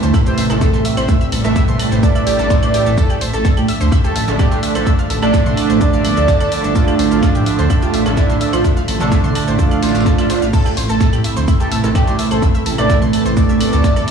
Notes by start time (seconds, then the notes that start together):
Already playing: A2 C3 E3 G3 A3 E5
0.03 D2 C5 C6, snare, shaker
0.14 E5 E6, kick, tambourine, claves, shaker
0.26 G4 C5 G5, shaker
0.38 A1 E5 E6, open hi-hat, tambourine
0.50 A1 A2 E3 A3 A4 A5, snare, claves, shaker
0.61 A4 A5, kick, snare, tambourine, shaker
0.74 A1 C6, snare, shaker
0.85 E5 E6, open hi-hat, tambourine, shaker
0.97 A1 C5 C6, closed hi-hat, claves, shaker
1.09 A2 E3 A3 E5 E6, kick, tambourine, shaker
1.21 E5 E6, shaker
1.32 A1 A4 A5, open hi-hat, tambourine, claves, shaker
1.44 A1 A2 E3 A3 A4 E5 A5, shaker
1.56 E4 E5, kick, snare, tambourine, shaker
1.68 A1 C6, mid tom, shaker
1.79 A5 A6, open hi-hat, tambourine, claves, shaker
1.92 A1 C5 C6, snare, shaker
2.03 A4 D5 A5, kick, tambourine, shaker
2.15 E5 E6, claves, shaker
2.27 A1 G4 G5, open hi-hat, tambourine, shaker
2.39 A1 A4 A5, snare, shaker
2.50 C5 C6, kick, snare, tambourine, shaker
2.63 A1 C5 C6, closed hi-hat, claves, shaker
2.74 G4 G5, open hi-hat, tambourine, shaker
2.86 A1 A4 A5, snare, shaker
2.97 D3 F3 A3 A4 A5, kick, tambourine, shaker
3.10 G4 G5, claves, shaker
3.21 A1 C5 C6, open hi-hat, tambourine
3.33 A1 A4 A5, shaker
3.45 A4 A5, kick, snare, tambourine, shaker
3.57 A2 G4 G5, claves, shaker
3.68 E5 E6, open hi-hat, tambourine
3.81 D2 C5 C6, snare, shaker
3.92 E5 E6, kick, tambourine, claves, shaker
4.04 G4 A4 G5, shaker
4.16 A1 E5 E6, open hi-hat, tambourine
4.28 A1 D3 A3 D4 A4 A5, snare, shaker
4.39 G4 A4 A5, kick, snare, tambourine, claves, shaker
4.52 A1 C6, snare, shaker
4.63 E5 E6, open hi-hat, tambourine, shaker
4.75 A1 A4 C5 C6, closed hi-hat, claves, shaker
4.87 D3 A3 D4 E5 E6, kick, tambourine, shaker
4.99 F5 F6, shaker
5.10 A1 A4 A5, open hi-hat, tambourine
5.22 A1 D3 A3 D4 A4 D5 A5, claves, shaker
5.34 E4 E5, kick, snare, tambourine, shaker
5.46 A1 C6, mid tom, shaker
5.57 A5 A6, open hi-hat, tambourine, claves
5.70 A1 C5 C6, snare, shaker
5.81 A4 D5 A5, kick, tambourine, shaker
5.93 F5 F6, shaker
6.05 G1 A4 A5, open hi-hat, tambourine, claves
6.17 D2 A4 A5, snare, shaker
6.28 A5 A6, kick, snare, tambourine, shaker
6.40 G1 A4 A5, closed hi-hat, claves, shaker
6.52 A5 A6, open hi-hat, tambourine, shaker
6.64 G1 A4 A5, snare, shaker
6.75 F4 A4 A5, kick, tambourine, shaker
6.88 G4 G5, claves, shaker
6.99 A1 C5 C6, open hi-hat, tambourine
7.11 A1 F4 A4 A5, shaker
7.23 A4 A5, kick, snare, tambourine, claves, shaker
7.35 A2 G4 G5, shaker
7.46 E5 E6, open hi-hat, tambourine
7.59 D2 C5 C6, snare, shaker
7.70 E5 E6, kick, tambourine, claves, shaker
7.82 F4 G4 G5, shaker
7.94 A1 E5 E6, open hi-hat, tambourine
8.06 A1 D3 A3 D4 A4 A5, snare, claves, shaker
8.17 E4 A4 A5, kick, snare, tambourine, shaker
8.29 A1 C6, snare, shaker
8.41 E5 E6, open hi-hat, tambourine, shaker
8.53 A1 F4 C5 C6, closed hi-hat, claves, shaker
8.64 D3 A3 D4 E5 E6, kick, tambourine, shaker
8.77 F5 F6, shaker
8.88 A1 A4 A5, open hi-hat, tambourine, claves, shaker
9.00 A1 D3 A3 D4 A4 A5, mid tom, shaker
9.12 E4 E5, kick, snare, tambourine, shaker
9.24 A1 C6, mid tom, shaker
9.35 A5 A6, open hi-hat, tambourine, claves, shaker
9.48 A1 C5 C6, snare, shaker
9.59 F4 A4 A5, kick, swell, shaker
9.71 F5 F6, claves, shaker
9.82 A1 C5 C6, snare, open hi-hat, tambourine, shaker
9.89 snare, tambourine
9.95 A1 F5 F6, snare, tambourine, shaker
10.01 snare, tambourine
10.06 A5 A6, kick, snare, tambourine, shaker
10.18 A1 E5 E6, snare, tambourine, claves, shaker
10.30 D3 A3 D4 C5 C6, snare, open hi-hat, tambourine, shaker
10.42 A1 F5 F6, snare, shaker
10.53 C3 E3 E4 A4 A5, kick, crash, tambourine, shaker
10.66 G4 G5, claves, shaker
10.77 A1 C5 C6, open hi-hat, tambourine
10.89 A1 A4 A5, shaker
11.01 A4 A5, kick, snare, tambourine, shaker
11.13 A2 G4 G5, claves, shaker
11.24 E5 E6, open hi-hat, tambourine
11.37 D2 C5 C6, snare, shaker
11.48 E5 E6, kick, tambourine, claves, shaker
11.60 G4 A4 G5, shaker
11.72 A1 E5 E6, open hi-hat, tambourine
11.84 A1 A2 E3 A3 A4 A5, snare, shaker
11.95 G4 A4 A5, kick, snare, tambourine, claves, shaker
12.07 A1 C6, snare, shaker
12.19 E5 E6, open hi-hat, tambourine, shaker
12.31 A1 A4 C5 C6, closed hi-hat, claves, shaker
12.42 A2 E3 A3 E5 E6, kick, tambourine, shaker
12.55 E5 E6, shaker
12.66 A1 A4 A5, open hi-hat, tambourine
12.78 A1 A2 E3 A3 A4 D5 A5, claves, shaker
12.90 E4 E5, kick, snare, tambourine, shaker
13.02 A1 C6, mid tom, shaker
13.13 A5 A6, open hi-hat, tambourine, claves
13.26 A1 C5 C6, snare, shaker
13.37 A4 D5 A5, kick, tambourine, shaker
13.49 E5 E6, shaker
13.60 G1 A4 A5, open hi-hat, tambourine, claves
13.73 D2 A4 A5, snare, shaker
13.84 A5 A6, kick, snare, tambourine, shaker
13.96 G1 A4 A5, closed hi-hat, claves, shaker